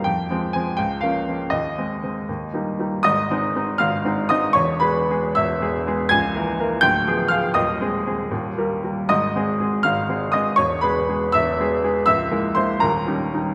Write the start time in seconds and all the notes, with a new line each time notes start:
0.04 F2 G5
0.30 F3 G#3 C4
0.53 F3 G#3 C4 G#5
0.77 C#2 G5
1.01 F3 A#3 C#4 F5
1.28 F3 A#3 C#4
1.50 D#2 D#5
1.78 G#3 C4
2.03 G#3 C4
2.29 D#2
2.53 G3 A#3 D#4
2.79 G3 A#3 D#4
3.03 G#1 G#2 D#5 D#6
3.31 G#3 C4 D#4
3.55 G#3 C4 D#4
3.78 G#1 G#2 F5 F6
4.05 G#3 C4 D#4
4.29 G#3 C4 D#4 D#5 D#6
4.53 E1 E2 C#5 C#6
4.80 G#3 B3 G#4 B4 B5
5.10 G#3 B3 G#4
5.35 E1 E2 E5 E6
5.61 G#3 B3 G#4
5.87 G#3 B3 G#4
6.09 C#1 C#2 G#5 G#6
6.35 E3 A#3 A#4
6.59 E3 A#3 A#4
6.81 D1 D2 G5 G6
7.07 F3 B3 G#4
7.28 F3 B3 G#4 F5 F6
7.54 D#1 D#2 D#5 D#6
7.81 G#3 C4 G#4
8.07 G#3 C4 G#4
8.31 D#1 D#2
8.58 G3 A#3 A#4
8.84 G3 A#3 A#4
9.09 G#1 G#2 D#5 D#6
9.36 G#3 C4 G#4
9.60 G#3 C4 G#4
9.83 G#1 G#2 F5 F6
10.09 G#3 C4 G#4
10.32 G#3 C4 G#4 D#5 D#6
10.56 E1 E2 C#5 C#6
10.81 G#3 B3 G#4 B4 B5
11.09 G#3 B3 G#4
11.32 E1 E2 E5 E6
11.60 G#3 B3 G#4
11.84 G#3 B3 G#4
12.06 C#1 C#2 E5 E6
12.31 G#3 A#3 E4
12.55 G#3 A#3 E4 C5 C6
12.80 D#1 D#2 A#4 A#5
13.07 G3 C#4 D#4
13.34 G3 C#4 D#4